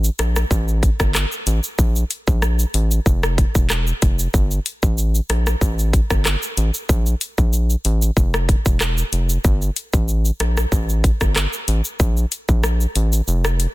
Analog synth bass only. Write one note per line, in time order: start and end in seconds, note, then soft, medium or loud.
0.19 0.45 A#1 medium
0.51 0.90 A1 loud
1.00 1.25 G1 medium
1.47 1.60 A1 loud
1.79 2.04 A#1 loud
2.28 2.65 A#1 loud
2.74 3.00 A1 loud
3.06 3.45 F1 loud
3.55 3.93 E1 medium
4.02 4.28 F1 medium
4.34 4.59 G1 loud
4.83 5.20 A1 medium
5.30 5.55 A#1 medium
5.61 6.01 A1 loud
6.10 6.36 G1 medium
6.57 6.71 A1 loud
6.89 7.15 A#1 loud
7.38 7.76 A#1 medium
7.85 8.11 A1 loud
8.17 8.56 F1 loud
8.66 9.03 E1 medium
9.13 9.38 F1 medium
9.45 9.70 G1 loud
9.93 10.31 A1 medium
10.40 10.66 A#1 medium
10.72 11.11 A1 loud
11.21 11.47 G1 medium
11.68 11.82 A1 loud
12.00 12.25 A#1 loud
12.49 12.86 A#1 medium
12.96 13.21 A1 loud
13.28 13.67 F1 loud